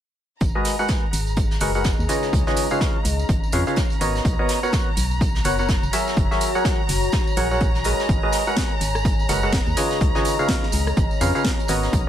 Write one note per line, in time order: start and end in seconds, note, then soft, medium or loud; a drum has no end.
0.41 0.52 G#1 medium
0.41 4.93 G#4 medium
0.41 12.09 A#5 medium
0.41 kick loud
0.41 closed hi-hat medium
0.41 tambourine soft
0.55 0.76 G#3 medium
0.55 0.76 F#4 medium
0.55 0.76 G#4 medium
0.55 0.76 A#4 medium
0.55 0.76 B4 medium
0.55 0.76 D#5 loud
0.64 snare soft
0.64 closed hi-hat medium
0.64 open hi-hat medium
0.64 tambourine medium
0.79 1.06 G#3 medium
0.79 1.06 F#4 medium
0.79 1.06 G#4 medium
0.79 1.06 A#4 medium
0.79 1.06 B4 medium
0.79 1.06 F#5 loud
0.79 2.97 A#5 medium
0.79 tambourine soft
0.83 4.88 D#5 medium
0.88 kick medium
0.88 snare loud
0.88 closed hi-hat medium
0.88 tambourine soft
1.13 1.57 G#1 medium
1.13 closed hi-hat medium
1.13 open hi-hat medium
1.13 tambourine medium
1.27 tambourine soft
1.37 kick loud
1.37 closed hi-hat medium
1.37 tambourine soft
1.51 snare soft
1.51 tambourine soft
1.60 1.94 F#1 medium
1.60 1.72 G#3 medium
1.60 1.72 F#4 medium
1.60 1.72 G#4 medium
1.60 1.72 A#4 medium
1.60 1.72 B4 medium
1.60 1.72 F#5 medium
1.60 closed hi-hat medium
1.60 open hi-hat medium
1.60 tambourine medium
1.74 1.91 G#3 medium
1.74 1.91 F#4 medium
1.74 1.91 G#4 medium
1.74 1.91 A#4 medium
1.74 1.91 B4 medium
1.74 1.91 F#5 medium
1.74 tambourine soft
1.84 kick medium
1.84 snare loud
1.84 closed hi-hat medium
1.84 tambourine medium
1.99 2.07 D#2 medium
1.99 tambourine soft
2.08 2.44 C#3 medium
2.08 4.93 C#4 medium
2.08 2.44 F4 medium
2.08 2.44 G#4 medium
2.08 2.44 B4 medium
2.08 2.44 C#5 medium
2.08 2.44 D#5 medium
2.08 snare soft
2.08 closed hi-hat medium
2.08 open hi-hat loud
2.08 tambourine medium
2.22 snare soft
2.22 tambourine soft
2.33 2.44 C#2 loud
2.33 kick loud
2.33 closed hi-hat medium
2.33 tambourine medium
2.47 2.68 C#3 medium
2.47 2.68 F4 medium
2.47 2.68 G#4 medium
2.47 2.68 B4 medium
2.47 2.68 C#5 medium
2.47 2.68 D#5 loud
2.47 snare soft
2.56 closed hi-hat medium
2.56 open hi-hat loud
2.56 tambourine medium
2.71 2.98 C#3 medium
2.71 2.98 F4 medium
2.71 2.98 G#4 medium
2.71 2.98 B4 medium
2.71 2.98 C#5 medium
2.71 2.98 F5 loud
2.71 tambourine soft
2.81 kick loud
2.81 snare loud
2.81 closed hi-hat medium
2.81 tambourine soft
3.05 3.24 C#2 medium
3.05 closed hi-hat medium
3.05 open hi-hat loud
3.05 tambourine medium
3.19 tambourine soft
3.29 3.40 G#1 medium
3.29 kick loud
3.29 closed hi-hat medium
3.29 tambourine medium
3.44 tambourine soft
3.52 3.64 F2 medium
3.52 3.64 C#3 medium
3.52 3.64 F4 medium
3.52 3.64 G#4 medium
3.52 3.64 B4 medium
3.52 3.64 C#5 medium
3.52 3.64 F5 loud
3.52 closed hi-hat medium
3.52 open hi-hat loud
3.52 tambourine medium
3.67 3.83 C#3 medium
3.67 3.83 F4 medium
3.67 3.83 G#4 medium
3.67 3.83 B4 medium
3.67 3.83 C#5 medium
3.67 3.83 F5 medium
3.67 closed hi-hat soft
3.67 tambourine soft
3.76 kick loud
3.76 snare loud
3.76 closed hi-hat medium
3.76 tambourine soft
3.90 closed hi-hat soft
3.90 tambourine soft
4.01 4.20 G#1 medium
4.01 4.36 B3 medium
4.01 4.36 F#4 medium
4.01 4.36 A#4 medium
4.01 4.36 B4 medium
4.01 4.36 C#5 medium
4.01 4.36 D#5 medium
4.01 closed hi-hat medium
4.01 open hi-hat loud
4.01 tambourine medium
4.15 snare soft
4.15 tambourine soft
4.25 4.36 B1 loud
4.25 5.93 B3 medium
4.25 kick loud
4.25 closed hi-hat medium
4.25 tambourine soft
4.39 4.60 B3 loud
4.39 4.60 F#4 medium
4.39 4.60 A#4 medium
4.39 4.60 B4 medium
4.39 4.60 C#5 medium
4.39 4.60 D#5 loud
4.49 snare soft
4.49 closed hi-hat medium
4.49 open hi-hat loud
4.49 tambourine medium
4.55 8.77 F#4 medium
4.55 8.77 C#5 medium
4.63 4.90 B3 medium
4.63 4.90 F#4 medium
4.63 4.90 A#4 medium
4.63 4.90 B4 medium
4.63 4.90 C#5 medium
4.63 4.90 F#5 loud
4.63 tambourine soft
4.72 kick loud
4.72 snare loud
4.72 closed hi-hat medium
4.72 tambourine medium
4.97 5.41 B1 medium
4.97 closed hi-hat medium
4.97 open hi-hat loud
4.97 tambourine medium
5.11 tambourine soft
5.21 kick loud
5.21 closed hi-hat medium
5.21 tambourine medium
5.35 snare soft
5.35 tambourine soft
5.44 5.78 F#1 medium
5.44 5.56 B3 medium
5.44 5.56 F#4 medium
5.44 5.56 A#4 medium
5.44 5.56 B4 medium
5.44 5.56 C#5 medium
5.44 5.56 F#5 loud
5.44 closed hi-hat medium
5.44 open hi-hat loud
5.44 tambourine medium
5.58 5.75 B3 medium
5.58 5.75 F#4 medium
5.58 5.75 A#4 medium
5.58 5.75 B4 medium
5.58 5.75 C#5 medium
5.58 5.75 F#5 medium
5.58 tambourine soft
5.68 kick loud
5.68 snare loud
5.68 closed hi-hat medium
5.68 tambourine soft
5.83 5.91 F#1 medium
5.83 tambourine soft
5.93 6.28 F#3 medium
5.93 6.28 F#4 medium
5.93 6.28 G#4 medium
5.93 6.28 A#4 medium
5.93 6.28 C#5 medium
5.93 6.28 E5 medium
5.93 snare soft
5.93 closed hi-hat medium
5.93 open hi-hat loud
5.93 tambourine loud
6.07 snare soft
6.07 tambourine soft
6.16 6.28 F#1 medium
6.16 kick loud
6.16 closed hi-hat medium
6.16 tambourine soft
6.31 6.52 F#3 medium
6.31 6.52 F#4 medium
6.31 6.52 G#4 medium
6.31 6.52 A#4 medium
6.31 6.52 C#5 medium
6.31 6.52 E5 loud
6.31 snare soft
6.31 tambourine soft
6.41 closed hi-hat medium
6.41 open hi-hat loud
6.41 tambourine medium
6.55 6.82 F#3 medium
6.55 6.82 F#4 medium
6.55 6.82 G#4 medium
6.55 6.82 A#4 medium
6.55 6.82 C#5 medium
6.55 6.82 F#5 loud
6.55 tambourine soft
6.64 8.77 G#5 medium
6.64 kick loud
6.64 snare loud
6.64 closed hi-hat medium
6.64 tambourine medium
6.89 7.08 F#1 medium
6.89 closed hi-hat medium
6.89 open hi-hat loud
6.89 tambourine loud
7.03 tambourine soft
7.12 kick loud
7.12 snare loud
7.12 closed hi-hat medium
7.12 tambourine soft
7.27 tambourine soft
7.37 7.94 A#1 loud
7.37 7.48 F#3 medium
7.37 7.48 F#4 medium
7.37 7.48 G#4 medium
7.37 7.48 A#4 medium
7.37 7.48 C#5 medium
7.37 7.48 F#5 loud
7.37 closed hi-hat medium
7.37 open hi-hat loud
7.37 tambourine medium
7.51 7.67 F#3 medium
7.51 7.67 F#4 medium
7.51 7.67 G#4 medium
7.51 7.67 A#4 medium
7.51 7.67 C#5 medium
7.51 7.67 F#5 medium
7.51 tambourine soft
7.60 kick loud
7.60 closed hi-hat medium
7.60 tambourine soft
7.74 snare soft
7.74 tambourine soft
7.84 8.20 G#3 medium
7.84 8.20 F#4 medium
7.84 8.20 G#4 medium
7.84 8.20 A#4 medium
7.84 8.20 B4 medium
7.84 8.20 D#5 medium
7.84 closed hi-hat medium
7.84 open hi-hat loud
7.84 tambourine medium
7.99 snare soft
7.99 tambourine soft
8.09 8.20 G#1 loud
8.09 12.09 G#4 medium
8.09 kick loud
8.09 closed hi-hat medium
8.09 tambourine soft
8.19 12.09 D#5 medium
8.23 8.44 G#3 medium
8.23 8.44 F#4 medium
8.23 8.44 G#4 medium
8.23 8.44 A#4 medium
8.23 8.44 B4 medium
8.23 8.44 D#5 loud
8.32 snare soft
8.32 closed hi-hat medium
8.32 open hi-hat loud
8.32 tambourine medium
8.47 8.74 G#3 medium
8.47 8.74 F#4 medium
8.47 8.74 G#4 medium
8.47 8.74 A#4 medium
8.47 8.74 B4 medium
8.47 8.74 F#5 loud
8.47 tambourine soft
8.57 kick loud
8.57 snare loud
8.57 closed hi-hat medium
8.57 tambourine medium
8.78 9.25 G#1 medium
8.78 10.65 A#5 medium
8.78 closed hi-hat medium
8.78 open hi-hat loud
8.78 tambourine medium
8.95 cross-stick medium
8.95 tambourine soft
9.05 kick loud
9.05 closed hi-hat medium
9.05 tambourine soft
9.19 tambourine soft
9.29 9.62 F#1 medium
9.29 9.40 G#3 medium
9.29 9.40 F#4 medium
9.29 9.40 G#4 medium
9.29 9.40 A#4 medium
9.29 9.40 B4 medium
9.29 9.40 F#5 loud
9.29 closed hi-hat medium
9.29 open hi-hat loud
9.29 tambourine medium
9.43 9.59 G#3 medium
9.43 9.59 F#4 medium
9.43 9.59 G#4 medium
9.43 9.59 A#4 medium
9.43 9.59 B4 medium
9.43 9.59 F#5 medium
9.43 tambourine soft
9.53 kick loud
9.53 snare loud
9.53 closed hi-hat medium
9.53 tambourine medium
9.66 9.75 D#2 medium
9.66 tambourine soft
9.76 10.12 C#3 medium
9.76 12.09 C#4 medium
9.76 10.12 F4 medium
9.76 10.12 G#4 medium
9.76 10.12 B4 medium
9.76 10.12 C#5 medium
9.76 10.12 D#5 medium
9.76 snare soft
9.76 closed hi-hat medium
9.76 open hi-hat loud
9.76 tambourine medium
9.91 snare soft
9.91 tambourine soft
10.01 10.12 C#2 loud
10.01 kick loud
10.01 closed hi-hat medium
10.01 tambourine soft
10.15 10.36 C#3 loud
10.15 10.36 F4 medium
10.15 10.36 G#4 medium
10.15 10.36 B4 medium
10.15 10.36 C#5 medium
10.15 10.36 D#5 loud
10.15 snare soft
10.24 closed hi-hat medium
10.24 open hi-hat medium
10.24 tambourine medium
10.39 10.66 C#3 medium
10.39 10.66 F4 medium
10.39 10.66 G#4 medium
10.39 10.66 B4 medium
10.39 10.66 C#5 medium
10.39 10.66 F5 loud
10.39 tambourine soft
10.49 kick loud
10.49 snare loud
10.49 closed hi-hat medium
10.49 tambourine soft
10.63 snare soft
10.72 10.92 C#2 medium
10.72 closed hi-hat medium
10.72 open hi-hat medium
10.72 tambourine medium
10.87 cross-stick medium
10.87 tambourine soft
10.97 11.08 G#1 medium
10.97 kick loud
10.97 closed hi-hat medium
10.97 tambourine soft
11.11 tambourine soft
11.21 11.32 F2 loud
11.21 11.32 C#3 medium
11.21 11.32 F4 medium
11.21 11.32 G#4 medium
11.21 11.32 B4 medium
11.21 11.32 C#5 medium
11.21 11.32 F5 medium
11.21 closed hi-hat medium
11.21 open hi-hat loud
11.21 tambourine medium
11.35 11.51 C#3 medium
11.35 11.51 F4 medium
11.35 11.51 G#4 medium
11.35 11.51 B4 medium
11.35 11.51 C#5 medium
11.35 11.51 F5 medium
11.35 closed hi-hat soft
11.35 tambourine soft
11.45 kick loud
11.45 snare loud
11.45 closed hi-hat medium
11.45 tambourine soft
11.59 closed hi-hat soft
11.59 tambourine soft
11.68 11.89 G#1 medium
11.68 12.04 B3 medium
11.68 12.04 F#4 medium
11.68 12.04 A#4 medium
11.68 12.04 B4 medium
11.68 12.04 C#5 medium
11.68 12.04 D#5 medium
11.68 closed hi-hat medium
11.68 open hi-hat loud
11.68 tambourine medium
11.83 snare soft
11.83 tambourine soft
11.93 12.04 B1 loud
11.93 12.09 B3 medium
11.93 kick loud
11.93 closed hi-hat medium
11.93 tambourine soft